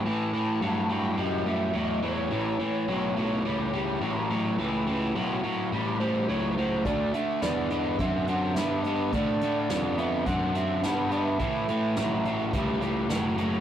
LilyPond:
<<
  \new Staff \with { instrumentName = "Lead electric guitar" } { \time 4/4 \key a \mixolydian \tempo 4 = 106 a''4. g''8 dis''8 e''8 dis''8 cis''8~ | cis''2.~ cis''8 r8 | r2 r8 c''8 cis''16. b'32 c''8 | d''8 e''8 d''8 dis''8 e''8 fis''8 e''8 dis''8 |
d''4. e''8 fis''8 e''8 fis''8 e''8~ | e''2.~ e''8 r8 | }
  \new Staff \with { instrumentName = "Overdriven electric guitar" } { \clef bass \time 4/4 \key a \mixolydian <a, e>8 <a, e>8 <a, fis>8 <a, fis>8 <a, g>8 <a, g>8 <a, fis>8 <a, fis>8 | <a, e>8 <a, e>8 <a, fis>8 <a, fis>8 <a, g>8 <a, g>8 <a, fis>8 <a, fis>8 | <a, e>8 <a, e>8 <a, fis>8 <a, fis>8 <a, g>8 <a, g>8 <a, fis>8 <a, fis>8 | <d a>8 <d a>8 <d b>8 <d b>8 <d c'>8 <d c'>8 <d b>8 <d b>8 |
<d a>8 <d a>8 <d b>8 <d b>8 <d c'>8 <d c'>8 <d b>8 <d b>8 | <a, e>8 <a, e>8 <a, fis>8 <a, fis>8 <a, g>8 <a, g>8 <a, fis>8 <a, fis>8 | }
  \new Staff \with { instrumentName = "Picked electric bass" } { \clef bass \time 4/4 \key a \mixolydian a,4 g,4 fis,4 e,4 | a,,8 r8 b,,4 cis,4 a,,4 | cis,4 b,,8 r8 a,,4 cis,4 | d,8 r8 e,4 fis,4 g,4 |
a,4 f,4 fis,4 g,4 | a,4 a,,4 cis,4 fis,,4 | }
  \new DrumStaff \with { instrumentName = "Drums" } \drummode { \time 4/4 r4 r4 r4 r4 | r4 r4 r4 r4 | r4 r4 r4 r4 | <hh bd>8 hh8 <hh sn>8 hh8 <hh bd>8 hh8 <hh sn>8 hh8 |
<hh bd>8 hh8 <hh sn>8 hh8 <hh bd>8 hh8 <hh sn>8 hh8 | <hh bd>8 hh8 <hh sn>8 hh8 <hh bd>8 hh8 <hh sn>8 hh8 | }
>>